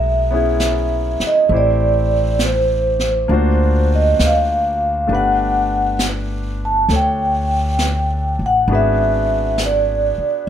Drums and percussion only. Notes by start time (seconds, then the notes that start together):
0.60 snare, hi-hat pedal
1.20 snare
1.50 brush sweep
2.39 snare, hi-hat pedal
2.99 snare
3.29 brush sweep
4.19 snare, hi-hat pedal
5.09 brush sweep
5.99 snare, hi-hat pedal
6.89 brush sweep, snare
7.79 snare, hi-hat pedal
8.69 brush sweep
9.58 snare, hi-hat pedal